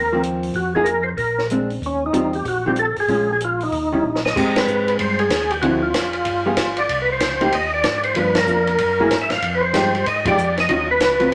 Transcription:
Already playing: D#2 A#4
0.13 F3 A#3 C4
0.23 closed hi-hat
0.43 open hi-hat
0.54 F2 F#4, kick, open hi-hat
0.75 F3 A#3 D#4 G#4
0.84 A#4, closed hi-hat
1.03 C5
1.17 A#1 A#4, kick, open hi-hat
1.38 snare
1.50 G#3 C4 D4, closed hi-hat
1.70 open hi-hat
1.82 D#2, kick, open hi-hat
1.86 C#4
2.06 D#4
2.12 E2 D#3 G3 C4 F4, closed hi-hat
2.33 G4, open hi-hat
2.45 A#1 F#4, kick, open hi-hat
2.66 D#3 G3 C4 F4 G4
2.76 A4, closed hi-hat
2.96 G#1 G#4, open hi-hat
3.08 A#1 G#3 C#4 F4, kick, open hi-hat
3.32 G#4
3.40 closed hi-hat
3.45 F4
3.60 D#4, open hi-hat
3.72 D#2, kick, open hi-hat
3.92 D#3 G3 C#4 E4
4.03 A#1
4.16 snare
4.25 D#5, snare
4.36 G#1 G#3 C4 G4, kick, crash
4.56 B4, snare, ride
4.67 G#2, hi-hat pedal
4.88 ride
4.99 G2 C5, kick, ride
5.19 G#4, ride
5.30 D#2, kick, snare, hi-hat pedal, ride
5.50 G4, ride
5.62 D2 D3 F3 C4 E4 F#4, kick, ride
5.83 F4
5.94 F1, kick, snare, hi-hat pedal, ride
6.13 ride
6.25 G1, kick, ride
6.46 G3 B3 F4 G#4
6.57 G#1, kick, snare, hi-hat pedal, ride
6.77 D5, ride
6.89 C2, kick, ride
7.02 B4
7.12 C5
7.20 C#2, kick, snare, hi-hat pedal, ride
7.41 A#3 D#4 G4, ride
7.52 D#2 D#5, kick, ride
7.74 D5
7.84 G#2, kick, snare, hi-hat pedal, ride
8.03 C5, ride
8.15 G2 F3 A#3 D4 B4, kick, ride
8.35 A#4, snare, ride
8.46 F2 F3, hi-hat pedal
8.50 A#3 D4
8.67 ride
8.78 F#2, kick, ride
9.00 F#3 A#3 E4 G#4
9.11 G#2, kick, snare, hi-hat pedal, ride
9.22 E5
9.30 G#2 F5, snare, ride
9.42 F2, kick, ride
9.55 B4
9.61 C5
9.73 G2 F3 G#3 D#4 G4, kick, snare, hi-hat pedal, ride
9.95 ride
10.06 G#2 D#5, kick, ride
10.25 F3 G#3 D#4 G4 D5, kick, ride
10.37 F2, hi-hat pedal
10.57 D#5, snare, ride
10.69 D#2 D#3 F#3 C#4 F4, kick, ride
10.91 B4
11.00 C#2, kick, snare, hi-hat pedal, ride
11.20 F#3 C4 F4, ride

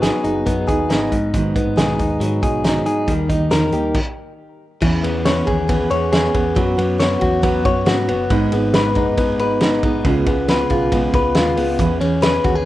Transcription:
Already playing: F#3 B3
0.03 F#3 B3 D#4 G#4, snare, closed hi-hat
0.24 F#1 B3 D#4 G#4, closed hi-hat
0.46 F#2 F#3 B3 D#4 G#4, kick, closed hi-hat
0.68 D#2 B3 D#4 G#4, kick, closed hi-hat
0.90 G#1 F#3 B3 D#4 G#4, snare, closed hi-hat
1.11 G#1 G#2 F#3 B3 D#4, kick, closed hi-hat
1.34 G#2 D#3 F#3 B3 D#4, kick, closed hi-hat
1.54 F#3 B3 D#4, kick, closed hi-hat
1.66 G#1
1.76 B1 G#2 D#3 F#3 B3 D#4 G#4, snare, closed hi-hat
1.98 D#2 F#3 B3 D#4, kick, closed hi-hat
2.20 G#2 D#3 F#3 B3 D#4, closed hi-hat
2.42 B1 F#3 B3 D#4 G#4, kick, closed hi-hat
2.64 G#2 D#3 F#3 B3 D#4, snare, closed hi-hat
2.86 F#3 B3 D#4 G#4, closed hi-hat
3.07 D#2 D#3 G3 A#3 D#4, kick, closed hi-hat
3.29 G3 A#3 D#4, kick, closed hi-hat
3.40 D#2
3.51 E2 D#3 G3 A#3 D#4 A#4, snare, closed hi-hat
3.72 D#2 G3 A#3 D#4 G4, closed hi-hat
3.95 kick, crash
4.81 E2 E3 B3 C#4 G#4, kick, crash
5.02 E2 B3 C#4 G#4, ride
5.24 E3 B3 C#4 G#4 C#5, snare, ride
5.45 D#2 B3 C#4 G#4, kick, ride
5.68 E3 B3 C#4 G#4, kick, ride
5.90 E2 B3 C#4 G#4 C#5, ride
6.12 E3 B3 C#4 G#4, snare, ride
6.34 E2 B3 C#4 G#4, kick, ride
6.55 F#2 F#3 B3 C#4 F#4, kick, ride
6.77 F#2 B3 C#4 F#4, ride
6.98 F#3 B3 C#4 F#4 C#5, snare, ride
7.19 E2 B3 C#4 F#4, kick, ride
7.42 F#3 B3 C#4 F#4, kick, ride
7.64 F#2 B3 C#4 F#4 C#5, kick, ride
7.85 G#2 F#3 B3 C#4 F#4, snare, ride
8.08 F#1 B3 C#4 F#4, ride
8.30 G#1 G#2 G#3 B3 D#4 G#4, kick, ride
8.52 G#1 B3 D#4 G#4, ride
8.74 G#3 B3 D#4 G#4 B4, snare, ride
8.95 F#1 B3 D#4 G#4, kick, ride
9.17 G#3 B3 D#4 G#4, kick, ride
9.39 G#1 B3 D#4 G#4 B4, ride
9.61 G#3 B3 D#4 G#4, snare, ride
9.83 B1 B3 D#4 G#4, kick, ride
10.05 C#2 C#3 G#3 B3 F4 G#4, kick, ride
10.26 C#2 B3 F4 G#4, kick, ride
10.48 G#3 B3 F4 G#4 B4, snare, ride
10.70 B1 B3 F4 G#4, kick, ride
10.92 C#3 G#3 B3 F4 G#4, kick, ride
11.13 C#2 B3 F4 G#4 B4, kick, ride
11.35 D#2 G#3 B3 F4 G#4, snare, ride
11.57 C#2 B3 F4 G#4, open hi-hat, ride
11.79 E2 E3 B3 C#4 G#4, kick, hi-hat pedal, ride
12.01 E2 B3 C#4 G#4, ride
12.22 E3 B3 C#4 G#4 B4, snare, clap, ride
12.44 D#2 C#4 F#4 G#4, kick, ride
12.48 B3
12.55 G#4

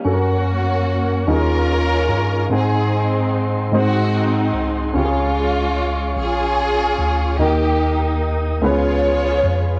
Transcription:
0.04 F#2 C#4 F#4 A4 A#4 C#5 F#5 C#6
0.09 A#3
0.13 A#4
1.27 D#2 D#3 G3 C#4 D#4 F4 G#4 A#4 D#5 F5
1.31 C#4 G#4
2.09 G2
2.49 G#2 C4 D#4 G#4 C5 C6
2.54 C4 G#4
3.72 G#2 G#3 C4 D#4 F#4 C5 F#5 C6
3.76 C4 D#4
4.53 C2
4.94 C#2 C#3 G#3 C#4 F4 C#5 F5 C#6
4.98 G4
5.04 G#4
6.17 A#1 C#4 F4 G#4
6.99 D2
7.39 D#2 D#3 A#3 D#4 F#4 G4 A#4 D#5 G5 D#6
7.46 G4
8.61 C#2 C#3 G#3 B3 C#4 E4 F4 G#4 B4 C#5 F5 G#5
8.69 F4
9.44 F2

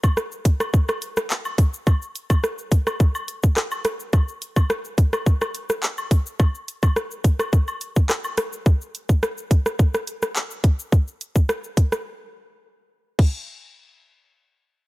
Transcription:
0.03 kick, high woodblock, shaker
0.17 cross-stick, shaker
0.32 shaker
0.45 kick, closed hi-hat, cabasa, shaker
0.60 cross-stick, high woodblock, shaker
0.74 kick, shaker
0.89 cross-stick, high woodblock, shaker
1.02 closed hi-hat, cabasa, shaker
1.17 cross-stick, shaker
1.30 clap, shaker
1.45 high woodblock, shaker
1.58 kick, closed hi-hat, cabasa, shaker
1.74 shaker
1.87 kick, high woodblock, shaker
2.02 shaker
2.15 closed hi-hat, cabasa, shaker
2.30 kick, high woodblock, shaker
2.44 cross-stick, shaker
2.58 shaker
2.71 kick, closed hi-hat, cabasa, shaker
2.87 cross-stick, high woodblock, shaker
3.00 kick, shaker
3.15 high woodblock, shaker
3.28 closed hi-hat, cabasa, shaker
3.43 kick, shaker
3.57 cross-stick, clap, shaker
3.71 high woodblock, shaker
3.85 cross-stick, closed hi-hat, cabasa, shaker
4.00 shaker
4.13 kick, high woodblock, shaker
4.28 shaker
4.42 closed hi-hat, cabasa, shaker
4.56 kick, high woodblock, shaker
4.70 cross-stick, shaker
4.85 shaker
4.98 kick, closed hi-hat, cabasa, shaker
5.13 cross-stick, high woodblock, shaker
5.26 kick, shaker
5.41 cross-stick, high woodblock, shaker
5.54 closed hi-hat, cabasa, shaker
5.69 cross-stick, shaker
5.83 clap, shaker
5.98 high woodblock, shaker
6.11 kick, closed hi-hat, cabasa, shaker
6.26 shaker
6.40 kick, high woodblock, shaker
6.55 shaker
6.68 closed hi-hat, cabasa, shaker
6.83 kick, high woodblock, shaker
6.96 cross-stick, shaker
7.11 shaker
7.24 kick, closed hi-hat, cabasa, shaker
7.39 cross-stick, high woodblock, shaker
7.53 kick, shaker
7.68 high woodblock, shaker
7.81 closed hi-hat, cabasa, shaker
7.96 kick, shaker
8.09 cross-stick, clap, shaker
8.24 high woodblock, shaker
8.37 cross-stick, closed hi-hat, cabasa, shaker
8.53 shaker
8.66 kick, shaker
8.81 shaker
8.95 closed hi-hat, shaker
9.09 kick, shaker
9.23 cross-stick, shaker
9.38 shaker
9.51 kick, closed hi-hat, shaker
9.66 cross-stick, shaker
9.79 kick, shaker
9.94 cross-stick, shaker
10.07 closed hi-hat, shaker
10.22 cross-stick, shaker
10.36 clap, shaker
10.51 shaker
10.64 kick, closed hi-hat, shaker
10.79 shaker
10.92 kick, shaker
11.08 shaker
11.21 closed hi-hat, shaker
11.36 kick, shaker
11.49 cross-stick, shaker
11.64 shaker
11.77 kick, closed hi-hat, shaker
11.92 cross-stick, shaker
13.19 kick, crash

